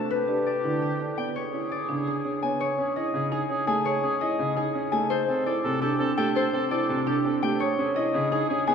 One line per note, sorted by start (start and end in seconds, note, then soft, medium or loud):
0.00 0.16 A3 medium
0.00 1.37 A4 medium
0.00 0.12 C5 medium
0.00 0.16 C5 medium
0.00 0.45 D5 medium
0.00 0.12 E5 medium
0.00 1.37 A5 medium
0.10 1.13 G4 medium
0.10 2.62 B4 medium
0.28 0.52 D4 medium
0.28 0.51 G4 medium
0.46 1.70 D5 medium
0.64 0.87 D3 medium
0.64 0.87 E4 medium
0.82 1.37 G4 medium
0.99 1.23 D4 medium
0.99 1.23 A4 medium
1.17 1.41 B3 medium
1.17 1.41 D5 medium
1.17 1.37 G5 medium
1.35 2.38 G#4 medium
1.35 2.59 C#5 medium
1.53 1.76 C#4 medium
1.53 1.76 E4 medium
1.72 2.62 D5 medium
1.89 2.12 C#3 medium
1.89 2.12 D4 medium
2.07 3.31 G#4 medium
2.25 2.48 C#4 medium
2.25 2.48 G#4 medium
2.43 2.66 B3 medium
2.43 2.59 C#5 medium
2.43 3.66 G#5 medium
2.60 2.73 G#4 soft
2.60 3.84 C#5 medium
2.60 2.84 C#5 medium
2.78 3.02 C#4 medium
2.78 2.91 G#4 medium
2.95 3.19 E4 medium
2.95 3.08 G#4 medium
2.95 4.20 D#5 medium
3.14 3.37 C#3 medium
3.14 3.26 G#4 medium
3.32 3.55 D#4 medium
3.32 3.44 G#4 medium
3.32 4.56 G#4 medium
3.50 3.73 C#4 medium
3.50 3.62 G#4 medium
3.67 3.91 A3 medium
3.67 3.80 G#4 medium
3.67 3.91 G#4 medium
3.67 4.91 G#5 medium
3.85 3.98 G#4 medium
3.85 5.12 C#5 loud
3.85 4.09 C#5 medium
4.02 4.27 C#4 medium
4.02 4.15 G#4 medium
4.21 4.44 E4 medium
4.21 4.33 G#4 medium
4.21 5.12 D#5 medium
4.39 4.62 C#3 medium
4.39 4.51 G#4 medium
4.56 4.80 D#4 medium
4.56 4.69 G#4 medium
4.56 5.12 G#4 medium
4.74 4.98 C#4 medium
4.74 4.87 G#4 soft
4.92 5.16 A3 medium
4.92 5.16 G#4 medium
4.92 5.12 G#5 medium
5.10 5.23 A4 soft
5.10 6.35 C5 loud
5.10 5.34 C5 medium
5.28 5.51 C4 medium
5.28 5.41 A4 medium
5.46 5.69 E4 medium
5.46 5.59 A4 medium
5.46 6.70 D5 medium
5.64 5.87 C3 medium
5.64 5.76 A4 medium
5.81 6.05 D4 medium
5.81 7.05 G4 medium
5.81 5.94 A4 medium
5.99 6.23 C4 medium
5.99 6.12 A4 medium
6.17 6.41 A3 loud
6.17 6.41 G4 medium
6.17 6.30 A4 medium
6.17 7.41 G5 loud
6.35 6.48 A4 medium
6.35 6.59 C5 loud
6.35 7.62 C5 loud
6.53 6.77 C4 medium
6.53 6.66 A4 medium
6.71 6.94 E4 medium
6.71 6.83 A4 medium
6.71 7.62 D5 medium
6.89 7.12 C3 loud
6.89 7.01 A4 medium
7.07 7.30 D4 loud
7.07 7.62 G4 medium
7.07 7.19 A4 medium
7.25 7.48 C4 medium
7.25 7.37 A4 soft
7.43 7.66 A3 loud
7.43 7.66 G4 medium
7.43 7.62 G5 loud
7.60 7.73 G#4 soft
7.60 8.75 C#5 loud
7.60 7.84 C#5 loud
7.79 8.02 C#4 medium
7.79 7.91 G#4 medium
7.96 8.19 E4 medium
7.96 8.09 G#4 medium
7.96 8.75 D#5 medium
8.14 8.37 C#3 loud
8.14 8.27 G#4 medium
8.31 8.55 D#4 loud
8.31 8.44 G#4 medium
8.31 8.75 G#4 medium
8.49 8.73 C#4 medium
8.49 8.62 G#4 medium
8.67 8.75 B3 loud
8.67 8.75 G#4 medium
8.67 8.75 G#5 loud